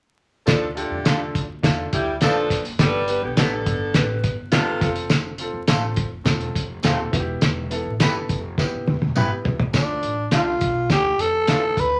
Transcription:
0.46 upright bass D2, saxophone section F3 D4 A4, grand piano D4 F4 A4, kick, snare, closed hi-hat, tambourine
0.75 saxophone section D3 A3 G4, grand piano D4 F4 A4, closed hi-hat
0.91 upright bass F2
1.05 upright bass E2, clean electric guitar A3 D4 F4 A4, grand piano D4 F4 A4, snare, closed hi-hat, tambourine
1.35 upright bass D2, kick, closed hi-hat
1.63 upright bass E2, saxophone section D3 A3 F4, grand piano D4 F4 A4, kick, snare, closed hi-hat, tambourine
1.92 upright bass D2, saxophone section G3 E4 G4, kick, closed hi-hat
2.21 upright bass F1, saxophone section F3 D4 A4, clean electric guitar A3 D4 F4 A4, grand piano D4 F4 B4, snare, closed hi-hat, tambourine
2.50 upright bass F#1, kick, snare, closed hi-hat
2.65 closed hi-hat
2.79 upright bass G1, saxophone section G3 D4 B4, grand piano B3 G4 A4, kick, snare, closed hi-hat, tambourine
3.08 grand piano B3 G4 B4, closed hi-hat
3.22 upright bass B1, saxophone section D3 B3 G4
3.36 upright bass A1, saxophone section D3 B3 A4, clean electric guitar G3 B3 D4 A4, grand piano B3 G4 A4, snare, closed hi-hat, tambourine
3.66 upright bass G1, kick, closed hi-hat
3.94 upright bass A1, grand piano B3 G4 B4, kick, snare, closed hi-hat, tambourine
4.24 upright bass G1, kick, closed hi-hat
4.52 saxophone section C3 A3 F4, clean electric guitar G3 B3 D4 A4, grand piano B3 G4 A4, snare, closed hi-hat, tambourine
4.80 upright bass F1, grand piano C4 F4 A4, kick, snare, closed hi-hat
4.96 closed hi-hat
5.10 snare, closed hi-hat, tambourine
5.38 grand piano C4 F4 A4, closed hi-hat
5.54 upright bass F1
5.67 upright bass A1, clean electric guitar A3 C4 F4 A4, grand piano C4 F4 A4, snare, closed hi-hat, tambourine
5.96 upright bass F1, kick, closed hi-hat
6.24 upright bass E1, grand piano C4 F4 A4, kick, snare, closed hi-hat, tambourine
6.41 closed hi-hat
6.55 upright bass F1, kick, closed hi-hat
6.83 upright bass D#1, clean electric guitar A3 C4 F4 A4, grand piano C4 F4 A4, snare, closed hi-hat, tambourine
7.12 upright bass E1, grand piano B3 E4 F#4, kick, snare, closed hi-hat
7.20 grand piano G4
7.41 upright bass E1, snare, closed hi-hat, tambourine
7.71 grand piano B3 E4 A4, closed hi-hat
7.85 upright bass A1
7.99 upright bass G1, clean electric guitar B3 E4 G4 B4, grand piano B3 E4 A4, snare, closed hi-hat, tambourine
8.29 upright bass F1, kick, closed hi-hat
8.58 grand piano B3 E4 G4, kick, snare, tambourine
8.72 upright bass G1
8.87 upright bass F1, high tom
9.01 upright bass E1, high tom
9.15 upright bass G1, grand piano B3 E4 G4, clean electric guitar B3 E4 G4 B4, mid tom, tambourine
9.44 upright bass C#2, floor tom
9.60 floor tom
9.73 upright bass D2, grand piano A3 D4 F4, tenor saxophone D4, kick, snare, closed hi-hat, tambourine
10.02 upright bass A1, closed hi-hat
10.31 upright bass C2, grand piano A3 D4 G4, clean electric guitar A3 D4 F4 A4, tenor saxophone F4, snare, closed hi-hat, tambourine
10.61 upright bass B1, kick, closed hi-hat
10.90 upright bass D2, grand piano A3 D4 G4, tenor saxophone G4, kick, snare, closed hi-hat, tambourine
11.18 upright bass F2, tenor saxophone A4, closed hi-hat
11.47 clean electric guitar A3 D4 F4 A4, grand piano A3 D4 E4, snare, closed hi-hat, tambourine
11.77 upright bass D2, tenor saxophone B4, kick, closed hi-hat

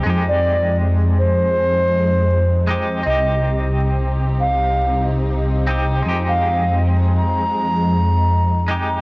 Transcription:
Already playing: string section C4 D#4
0.03 detuned saw bass F2, string section F3 G#3, clean electric guitar G#3 D#4
0.10 clean electric guitar G4
0.28 flute D5
1.18 flute C5
2.67 clean electric guitar G#3 D#4 G4
3.03 detuned saw bass C2, string section C3 C4 D#4 G4, clean electric guitar C4 D#4, flute D#5
3.10 clean electric guitar G4
4.40 flute F5
5.67 clean electric guitar C4 D#4 G4
6.03 detuned saw bass F2, string section F3 G#3, clean electric guitar G#3 D#4
6.09 clean electric guitar G4
6.28 flute F5
7.18 flute A#5
8.68 clean electric guitar G#3 D#4 G4

